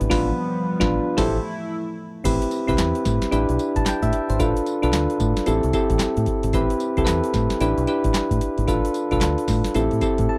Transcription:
Already playing: E3 D4 E4 G4 B4
0.01 G#1, closed hi-hat, shaker
0.10 A1 F3 G3 B3 D4 F4 B4, kick, snare, crash
0.80 A1 D4 F4 B4, kick, snare
1.17 A1 A3 E4 G4 A4 C5, kick, snare, crash
2.24 A1 C4 E4 G4 B4, kick, closed hi-hat, crash, tambourine, shaker
2.42 closed hi-hat, shaker
2.51 closed hi-hat, tambourine
2.67 C2 C4 E4 G4 B4, kick, closed hi-hat, shaker
2.78 E2, snare, clap, closed hi-hat, tambourine, shaker
2.95 closed hi-hat, shaker
3.05 A2, kick, snare, closed hi-hat, tambourine
3.22 snare, closed hi-hat, shaker
3.31 A1 D4 E4 G4 B4, closed hi-hat, tambourine, shaker
3.49 B1, closed hi-hat, shaker
3.59 closed hi-hat, tambourine
3.76 A1 A5, kick, closed hi-hat, shaker
3.86 G5, snare, clap, closed hi-hat, tambourine, shaker
4.02 A2 E5, kick, closed hi-hat, shaker
4.12 closed hi-hat, shaker
4.30 G#1 C5, closed hi-hat, shaker
4.39 A1 D4 F4 A4 B4, kick, closed hi-hat, tambourine, shaker
4.56 closed hi-hat, shaker
4.66 closed hi-hat, tambourine
4.82 B1 D4 F4 A4 B4, closed hi-hat, shaker
4.93 D2, snare, clap, closed hi-hat, tambourine, shaker
5.10 closed hi-hat, shaker
5.20 A2, kick, closed hi-hat, tambourine
5.37 snare, closed hi-hat, shaker
5.46 A1 C4 E4 G4 A4, closed hi-hat, tambourine, shaker
5.63 C2, closed hi-hat, shaker
5.73 C4 E4 G4 A4, kick, closed hi-hat, tambourine
5.90 A1, kick, closed hi-hat, shaker
5.99 snare, clap, closed hi-hat, tambourine, shaker
6.17 A2, closed hi-hat, shaker
6.26 kick, closed hi-hat, shaker
6.43 G#1, closed hi-hat, shaker
6.53 A1 C4 E4 G4 B4, kick, closed hi-hat, tambourine, shaker
6.70 closed hi-hat, shaker
6.80 closed hi-hat, tambourine
6.97 C2 C4 E4 G4 A4, kick, closed hi-hat, shaker
7.05 E2 B4, snare, clap, closed hi-hat, tambourine, shaker
7.24 closed hi-hat, shaker
7.34 A2, kick, snare, closed hi-hat, tambourine
7.50 snare, closed hi-hat, shaker
7.60 A1 D4 E4 G4 B4, closed hi-hat, tambourine, shaker
7.78 B1, closed hi-hat, shaker
7.87 D4 E4 G4 B4, closed hi-hat, tambourine
8.04 A1, kick, closed hi-hat, shaker
8.14 snare, clap, closed hi-hat, tambourine, shaker
8.31 A2, kick, closed hi-hat, shaker
8.41 closed hi-hat, shaker
8.58 G#1, closed hi-hat, shaker
8.67 A1 D4 F4 A4 B4, kick, closed hi-hat, tambourine, shaker
8.85 closed hi-hat, shaker
8.94 closed hi-hat, tambourine, shaker
9.11 B1 D4 F4 A4 B4, kick, closed hi-hat, shaker
9.21 D2, snare, clap, closed hi-hat, tambourine, shaker
9.38 closed hi-hat, shaker
9.48 A2, kick, snare, open hi-hat, tambourine
9.64 snare, closed hi-hat, shaker
9.74 A1 C4 E4 G4 A4, closed hi-hat, tambourine, shaker
9.91 A2, closed hi-hat, shaker
10.01 C4 E4 G4 A4, kick, closed hi-hat, tambourine
10.18 A2, kick, closed hi-hat, shaker
10.29 A5

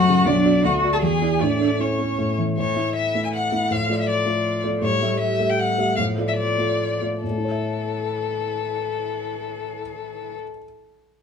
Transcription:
Already playing: F#2 A3 F#4 F#5
0.09 C#3
0.26 B1 D4 D5
0.46 F#4 D5
0.64 D2 F#4 F#5
0.84 F#4 D5
0.93 A4 A5
1.02 E2 G#4 G#5
1.22 E4 D5
1.41 A2 D4 D5
1.61 A3
1.80 C#4 E4 C#5
1.99 A3
2.19 A2
2.38 E3
2.58 A2 E3 C#5
2.76 A3 E4 E5
2.96 E3 E5
3.15 A3 E4 E5
3.24 G#5
3.34 F#5
3.52 A3 E4 E5
3.70 A2 F3 F5
3.89 A3 F4 D5
4.01 E5
4.07 F3 D5
4.25 A3 F4 D5
4.64 A3 F4 D5
4.81 A2 G3 C#5
5.02 A3 G4 E5
5.20 G3 E5
5.40 A3 G4 E5
5.50 G5
5.59 F#5
5.78 A3 G4 E5
5.96 A2 F3 F5
6.18 A3 F4 D5
6.28 E5
6.37 F3 D5
6.58 A3 F4 D5
7.01 A3 F4 D5
7.23 A2 E3 A4
7.30 A3
7.38 E4
7.45 C#5
7.51 E5

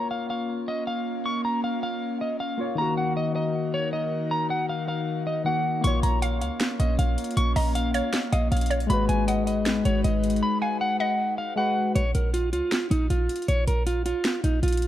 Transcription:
Already playing: A#3 C#4 F4 C#5
0.11 F5
0.30 F5
0.68 D#5
0.87 F5
1.26 C#6
1.45 A#5
1.64 F5
1.83 F5
2.21 D#5
2.40 F5
2.58 A#3 F4 C#5
2.75 D#3 A#3 D#4 F#4 A#4 A#5
2.81 F#4
2.97 F#5
3.17 D#5
3.36 D#5
3.74 C#5
3.93 D#5
4.31 A#5
4.50 F#5
4.69 F5
4.88 F5
5.27 D#5
5.44 D#3 A#3 F#4 F#5
5.81 A#1 A#3 C#4 F4 C#6, closed hi-hat
5.87 C#5
6.03 A#1 A#5, closed hi-hat
6.22 F5, closed hi-hat
6.41 C#2 F5, closed hi-hat
6.60 finger snap, snare, closed hi-hat
6.80 A#1 D#5, closed hi-hat
6.99 A#1 F5, closed hi-hat
7.18 closed hi-hat
7.24 closed hi-hat
7.31 closed hi-hat
7.37 A#1 C#6, closed hi-hat
7.56 A#1 D#5 A#5, open hi-hat
7.75 F5, closed hi-hat
7.94 C#5 F5, closed hi-hat
8.13 finger snap, snare, closed hi-hat
8.32 A#1 D#5 F5, closed hi-hat
8.52 A#1 F5, closed hi-hat
8.57 closed hi-hat
8.61 closed hi-hat
8.66 closed hi-hat
8.71 C#5, closed hi-hat
8.80 closed hi-hat
8.87 G#1 G#3 D#4 F#4 B4 B5, closed hi-hat
8.93 B4
9.09 G#1 G#5, closed hi-hat
9.28 D#5 F#5, closed hi-hat
9.47 D#5, closed hi-hat
9.65 finger snap, snare, closed hi-hat
9.85 G#1 C#5, closed hi-hat
10.04 G#1 D#5, closed hi-hat
10.24 closed hi-hat
10.30 closed hi-hat
10.36 closed hi-hat
10.43 B5
10.62 F5 G#5
10.81 F#5
11.00 D#5 F#5
11.38 F5
11.56 G#3 F#4 B4 F#5
11.95 A#1 C#5, closed hi-hat
12.15 A#1 A#4, closed hi-hat
12.34 F4, closed hi-hat
12.53 C#2 F4, closed hi-hat
12.71 finger snap, snare, closed hi-hat
12.91 A#1 D#4, closed hi-hat
13.10 A#1 F4, closed hi-hat
13.29 closed hi-hat
13.36 closed hi-hat
13.42 closed hi-hat
13.48 A#1 C#5, closed hi-hat
13.67 A#1 A#4, closed hi-hat
13.87 F4, closed hi-hat
14.06 F4, closed hi-hat
14.24 finger snap, snare, closed hi-hat
14.44 A#1 D#4, closed hi-hat
14.63 A#1 F4, closed hi-hat
14.68 closed hi-hat
14.73 closed hi-hat
14.77 closed hi-hat
14.82 closed hi-hat

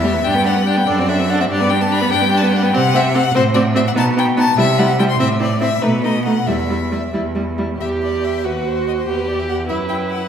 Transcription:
Already playing: E2 E5
0.03 G3 G4
0.14 B3 E4
0.24 G2 D4 G4 G5
0.34 B3 B4
0.45 D4 G4 F#5
0.55 B3 B4
0.66 D4 G4 G5
0.76 B3 B4
0.87 F#2 D4 A4 D5
0.98 C4 F#4
1.08 D4 A4 E5
1.19 C4 F#4
1.29 D4 A4 F#5
1.40 C4 F#4 E5
1.50 G2 D4 G4 D5
1.60 B3 B4
1.70 D4 G4 G5
1.80 B3 B4 A5
1.91 D4 G4 B5
2.01 B3 B4
2.10 G2 D4 G4 G5
2.21 B3 B4
2.31 D4 G4
2.38 B4 A5
2.43 B3
2.47 G5
2.52 D4 G4
2.56 F#5
2.63 B3 B4 G5
2.73 C3 C4 G4 F#5
2.94 C4 G4 E5
3.14 C4 G4 F#5
3.35 A2 C4 F#4 C5
3.54 C4 F#4 D5
3.75 C4 F#4 E5
3.87 F#5
3.95 B2 B3 D#4 A5
4.16 B3 D#4 G5
4.37 B3 D#4 A5
4.57 C3 G3 E4 E5
4.78 G3 E4 F#5
4.99 G3 E4 G5
5.10 C6
5.19 A2 C4 E4 E5
5.40 C4 E4 D5
5.61 C4 E4 E5
5.82 B2 A3 D#4 B4
6.04 A3 D#4 D#5
6.25 A3 D#4 F#5
6.46 E2 G3 E4 E5
6.69 G3 E4
6.91 G3 E4
7.13 E2 G3 E4
7.35 G3 E4
7.58 G3 E4
7.79 E2 G4 E5
8.03 D5
8.24 E5
8.44 D#2 F#4 B4
8.67 C5
8.88 D#5
8.98 C5
9.07 E2 G4 B4
9.28 D5
9.39 E5
9.49 F#5
9.68 F#2 E4 B4 E5
9.89 G5
10.11 F#5

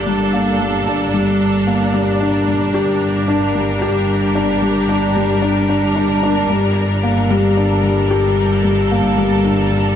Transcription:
Already playing: G1 G3 A#3 D4 G4 A4 A#4
0.06 G3
0.33 A#3
0.60 G3
0.87 D4
1.14 G3
1.67 A#3
1.94 G3
2.20 D4
2.48 G3
2.74 G4
2.84 G4
3.28 D4
3.55 G3
3.82 G4
4.35 D4
4.62 G3
4.89 D4
5.16 G3
5.42 D4
5.69 D4
5.96 D4
6.23 D4
6.50 G1 G3
7.01 A#3 A4
7.30 G3
7.57 D4
7.84 G3
8.11 G4
8.64 G3
8.91 A#3
9.18 G3
9.45 D4
9.71 G3

